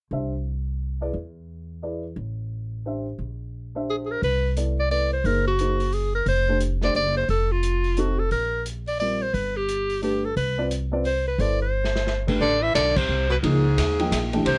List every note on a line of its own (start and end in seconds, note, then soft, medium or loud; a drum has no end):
0.11 1.10 C2 medium
0.11 0.31 D4 soft
0.11 0.31 G4 soft
0.11 0.31 C5 soft
0.11 0.32 E5 soft
1.01 1.13 E4 soft
1.01 1.13 G#4 soft
1.01 1.13 B4 soft
1.01 1.13 D5 medium
1.14 2.12 E2 medium
1.82 2.02 E4 soft
1.82 2.02 G#4 soft
1.82 2.02 B4 soft
1.82 2.02 D5 soft
2.16 3.15 A1 medium
2.85 3.05 D4 soft
2.85 3.05 G4 soft
2.85 3.05 C5 soft
2.85 3.05 E5 soft
3.19 4.18 A#1 medium
3.75 4.19 D4 soft
3.75 4.20 G4 soft
3.75 4.20 C5 soft
3.75 4.20 E5 soft
3.90 3.97 G#4 medium
4.06 4.13 G#4 medium
4.11 4.23 A#4 medium
4.22 5.20 C2 medium
4.22 4.55 B4 medium
4.22 kick soft
4.22 open hi-hat soft
4.56 4.76 B3 soft
4.56 4.76 E4 soft
4.56 4.76 A4 soft
4.56 4.76 D5 soft
4.56 closed hi-hat soft
4.80 4.91 D5 medium
4.90 5.10 B3 soft
4.90 5.10 E4 soft
4.90 5.10 A4 soft
4.90 5.10 B4 soft
4.90 5.11 D5 medium
4.90 open hi-hat soft
5.13 5.27 C5 medium
5.24 6.23 F#1 medium
5.24 5.44 A#3 soft
5.24 5.44 D#4 soft
5.24 5.44 G#4 soft
5.24 5.47 A#4 medium
5.24 5.44 C5 soft
5.24 kick soft
5.24 open hi-hat soft
5.47 5.95 F#4 medium
5.59 5.79 A#3 soft
5.59 5.79 D#4 soft
5.59 5.79 G#4 soft
5.59 5.79 C5 medium
5.59 closed hi-hat soft
5.80 open hi-hat soft
5.92 6.15 G#4 medium
5.92 open hi-hat soft
6.15 6.26 A#4 medium
6.26 6.91 F1 medium
6.26 6.59 C5 medium
6.26 kick soft
6.26 open hi-hat soft
6.48 6.60 A3 soft
6.48 6.60 D4 soft
6.48 6.60 G4 soft
6.48 6.60 C5 medium
6.61 closed hi-hat soft
6.82 6.94 A3 soft
6.82 6.94 D4 soft
6.82 6.94 G4 soft
6.82 6.94 C5 medium
6.82 6.95 D5 medium
6.82 snare soft
6.95 7.27 F#1 medium
6.95 7.16 D5 medium
6.95 open hi-hat soft
7.17 7.29 C5 medium
7.28 8.27 F1 medium
7.28 7.53 A4 medium
7.28 kick soft
7.28 open hi-hat soft
7.52 8.00 F4 medium
7.63 closed hi-hat soft
7.84 open hi-hat soft
7.97 8.17 C4 medium
7.97 8.17 D#4 soft
7.97 8.17 F#4 soft
7.97 8.21 F#4 medium
7.97 8.17 A4 medium
7.97 closed hi-hat soft
8.19 8.31 A4 medium
8.31 9.30 A#1 medium
8.31 8.63 A#4 medium
8.31 kick soft
8.31 open hi-hat soft
8.66 closed hi-hat soft
8.87 8.99 D5 medium
8.87 open hi-hat soft
9.00 9.20 G3 soft
9.00 9.20 C4 soft
9.00 9.20 F4 soft
9.00 9.20 A#4 soft
9.00 9.24 D5 medium
9.00 open hi-hat soft
9.22 9.35 C5 medium
9.34 10.32 G1 medium
9.34 9.58 B4 medium
9.34 kick soft
9.34 open hi-hat soft
9.57 10.03 G4 medium
9.69 closed hi-hat soft
9.90 open hi-hat soft
10.02 10.22 A3 medium
10.02 10.22 D4 soft
10.02 10.22 G4 soft
10.02 10.27 G4 medium
10.02 10.22 B4 soft
10.02 open hi-hat soft
10.25 10.36 A4 medium
10.36 11.35 C2 medium
10.36 10.68 B4 medium
10.36 kick soft
10.36 open hi-hat soft
10.58 10.69 C4 medium
10.58 10.70 F4 soft
10.58 10.70 B4 medium
10.58 10.70 D5 medium
10.71 closed hi-hat soft
10.92 11.03 C4 medium
10.92 11.04 F4 medium
10.92 11.04 B4 soft
10.92 11.04 D5 medium
11.05 11.25 C5 medium
11.05 open hi-hat soft
11.28 11.42 B4 medium
11.38 12.37 G1 medium
11.38 11.58 B3 medium
11.38 11.58 E4 soft
11.38 11.59 A4 soft
11.38 11.59 C5 medium
11.38 11.61 D5 medium
11.38 kick soft
11.38 open hi-hat soft
11.62 12.25 C5 medium
11.84 snare soft
11.96 snare medium
12.07 snare soft
12.27 12.39 A3 medium
12.27 12.40 D4 medium
12.27 12.40 G4 medium
12.27 12.40 B4 medium
12.27 kick medium
12.27 crash medium
12.41 12.74 A1 medium
12.41 12.63 D3 medium
12.41 12.64 D5 medium
12.41 kick soft
12.62 12.74 E3 medium
12.62 12.75 E5 medium
12.74 13.08 B1 medium
12.74 12.97 D3 medium
12.74 12.99 D5 loud
12.74 kick soft
12.74 snare medium
12.74 hi-hat pedal medium
12.74 ride medium
12.96 13.29 C3 medium
12.96 13.31 C5 medium
12.96 kick medium
12.96 crash medium
13.09 13.42 C2 medium
13.30 13.36 B2 medium
13.30 13.37 B4 medium
13.43 13.76 C#2 medium
13.43 14.29 G#2 medium
13.43 13.62 F3 medium
13.43 13.63 A#3 medium
13.43 13.63 D#4 medium
13.43 13.63 G#4 medium
13.43 14.30 G#4 medium
13.43 kick soft
13.43 ride medium
13.78 14.11 D#2 medium
13.78 kick soft
13.78 snare medium
13.78 hi-hat pedal medium
13.78 ride medium
13.99 14.31 F3 medium
13.99 14.31 A#3 medium
13.99 14.31 D#4 medium
13.99 14.32 G5 medium
13.99 ride soft
14.11 14.45 A#1 medium
14.11 kick soft
14.11 snare medium
14.11 hi-hat pedal medium
14.11 ride medium
14.33 14.44 E3 medium
14.33 14.45 A3 medium
14.33 14.45 D4 medium
14.33 14.45 G4 medium
14.33 ride soft
14.45 14.58 C2 medium
14.45 14.58 C3 medium
14.45 14.58 C5 medium
14.45 kick soft
14.45 ride medium